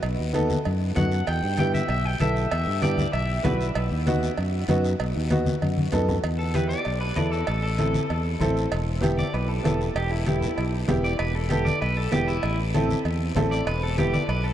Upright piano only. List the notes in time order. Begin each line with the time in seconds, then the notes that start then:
0.33 B3 D#4 A4
0.96 B3 D#4 F#4
1.59 B3 E4 G4
2.20 B3 E4 A4
2.82 B3 E4 G4
3.43 B3 E4 F#4
4.07 B3 D#4 F#4
4.68 B3 D#4 F#4
5.30 B3 D#4 F#4
5.92 B3 D#4 A4
6.54 B3 E4 G4
7.16 B3 E4 A4
7.78 C4 E4 A4
8.40 C4 E4 A4 C5
9.01 B3 E4 G4
9.63 B3 E4 A4
10.26 B3 E4 G4
10.88 B3 E4 G4
11.50 B3 E4 A4
12.11 B3 E4 G4
12.74 C4 E4 A4
13.35 C4 E4 A4
13.98 B3 E4 G4